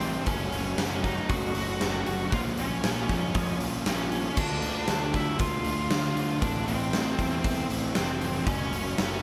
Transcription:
Already playing: picked electric bass A1, distorted electric guitar A2 E3, overdriven electric guitar A3 C4 E4, lead electric guitar C4 C5
0.00 distorted electric guitar A3 C4 E4, open hi-hat
0.26 picked electric bass F#1, distorted electric guitar F#3 A3 C#4 F#4, lead electric guitar C#4 C#5, kick, open hi-hat
0.51 picked electric bass F#1, distorted electric guitar A3 C#4 F#4, open hi-hat
0.77 picked electric bass F#1, distorted electric guitar F#3 A3 C#4 F#4, snare, open hi-hat
1.03 distorted electric guitar A3 C#4 F#4, lead electric guitar D#4 D#5, kick, open hi-hat
1.29 picked electric bass F#1, lead electric guitar F#4 F#5, kick, open hi-hat
1.54 picked electric bass F#1, overdriven electric guitar A3 C#4 F#4, open hi-hat
1.80 picked electric bass F#1, distorted electric guitar F#3 A3 C#4 F#4, snare, open hi-hat
2.06 picked electric bass F#1, distorted electric guitar A3 C#4 F#4, open hi-hat
2.31 picked electric bass A#1, distorted electric guitar A#2 F3 A#3 C#4 F4, lead electric guitar F4 F5, kick, open hi-hat
2.57 picked electric bass A#1, distorted electric guitar A#3 C#4 F4, lead electric guitar C#4 C#5, open hi-hat
2.82 picked electric bass A#1, overdriven electric guitar A#2, distorted electric guitar F3 A#3 C#4 F4, snare, open hi-hat
3.09 picked electric bass F2, distorted electric guitar A#3 C#4 F4, kick, open hi-hat
3.35 picked electric bass F2, kick, open hi-hat
3.60 picked electric bass A#1, overdriven electric guitar A#3 C#4 F4, open hi-hat
3.84 picked electric bass A#1, distorted electric guitar A#2 F3 A#3 C#4 F4, lead electric guitar C#4 C#5, snare, open hi-hat
4.11 distorted electric guitar A#3 C#4 F4, open hi-hat
4.36 picked electric bass D2, distorted electric guitar D3 A3 D4 F4, lead electric guitar D4 D5, kick, crash
4.62 picked electric bass D2, distorted electric guitar A3 D4 F4, open hi-hat
4.88 picked electric bass D2, distorted electric guitar D3 A3 D4 F4, snare, open hi-hat
5.13 distorted electric guitar A3 D4 F4, lead electric guitar E4 E5, kick, open hi-hat
5.39 picked electric bass D2, lead electric guitar F4 F5, kick, open hi-hat
5.64 picked electric bass D2, overdriven electric guitar A3 D4 F4, open hi-hat
5.90 picked electric bass D2, distorted electric guitar D3 A3 D4 F4, snare, open hi-hat
6.15 picked electric bass D2, distorted electric guitar A3 D4 F4, open hi-hat
6.40 picked electric bass A1, distorted electric guitar A2 E3 A3 C4 E4, lead electric guitar D4 D5, kick, open hi-hat
6.66 picked electric bass A1, distorted electric guitar A3 C4 E4, lead electric guitar C4 C5, open hi-hat
6.92 picked electric bass A1, overdriven electric guitar A2, distorted electric guitar E3 A3 C4 E4, snare, open hi-hat
7.17 picked electric bass E2, distorted electric guitar A3 C4 E4, kick, open hi-hat
7.44 picked electric bass E2, kick, open hi-hat
7.69 picked electric bass A1, overdriven electric guitar A3 C4 E4, open hi-hat
7.94 picked electric bass F1, distorted electric guitar A2 E3 A3 C4 E4, lead electric guitar C4 C5, snare, open hi-hat
8.20 distorted electric guitar A3 C4 E4, open hi-hat
8.45 picked electric bass F#1, distorted electric guitar F#2 C#3 F#3 A3 C#4, lead electric guitar C#4 C#5, kick, open hi-hat
8.71 picked electric bass F#1, distorted electric guitar F#3 A3 C#4, open hi-hat
8.97 picked electric bass F#1, overdriven electric guitar F#2, distorted electric guitar C#3 F#3 A3 C#4, snare, open hi-hat

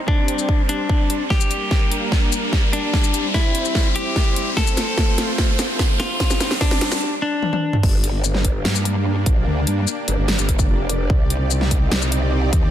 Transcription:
Already playing: supersaw synth G3 C4 C5 D5, riser
0.08 clean electric guitar D4, kick
0.28 closed hi-hat
0.39 shaker
0.49 kick
0.69 clean electric guitar D4, closed hi-hat
0.89 kick
1.10 closed hi-hat
1.30 supersaw synth G3 A#3 D4 A#4, clean electric guitar G4, kick, snare
1.41 shaker
1.51 closed hi-hat, shaker
1.71 kick, snare
1.92 closed hi-hat
2.12 kick, snare
2.32 closed hi-hat, shaker
2.53 kick, snare
2.73 clean electric guitar D4, closed hi-hat
2.94 supersaw synth C4 E4 C5, kick, snare
3.04 shaker
3.14 closed hi-hat, shaker
3.34 clean electric guitar E4, kick, snare
3.55 closed hi-hat
3.65 shaker
3.75 kick, snare
3.96 clean electric guitar G4, closed hi-hat
4.16 kick, snare
4.36 closed hi-hat
4.57 supersaw synth A3 F4 C5, clean electric guitar A4, kick, snare
4.67 shaker
4.77 snare, closed hi-hat, shaker
4.98 kick, snare
5.18 snare, closed hi-hat
5.38 kick, snare
5.59 snare, closed hi-hat, shaker
5.79 kick, snare
6.00 clean electric guitar F4, snare, closed hi-hat
6.20 supersaw synth G3 C4 D4, kick, snare
6.30 snare, shaker
6.40 snare, closed hi-hat, shaker
6.51 snare
6.61 clean electric guitar D4, kick, snare
6.71 snare
6.81 snare, closed hi-hat
6.92 snare, shaker
7.22 clean electric guitar D4
7.43 high tom
7.53 high tom
7.73 mid tom
7.83 wobble bass G1, supersaw synth A#3 D4 G4 D5, kick, crash
8.04 closed hi-hat
8.24 shaker
8.35 snare
8.45 kick, closed hi-hat
8.65 wobble bass G2, snare
8.75 shaker
8.85 closed hi-hat
9.26 wobble bass A#1, kick, closed hi-hat
9.47 wobble bass D2
9.67 wobble bass G2, closed hi-hat
9.87 shaker
10.08 wobble bass G1, closed hi-hat
10.18 wobble bass G1
10.28 snare
10.39 wobble bass G1, shaker
10.49 kick, closed hi-hat
10.59 kick, shaker
10.69 wobble bass F1
10.89 closed hi-hat
11.10 wobble bass C2, supersaw synth C4 D#4, kick
11.30 closed hi-hat
11.51 shaker
11.61 snare
11.71 kick, closed hi-hat
11.92 wobble bass C2, snare
12.02 shaker
12.12 closed hi-hat
12.53 wobble bass D#2, kick, closed hi-hat

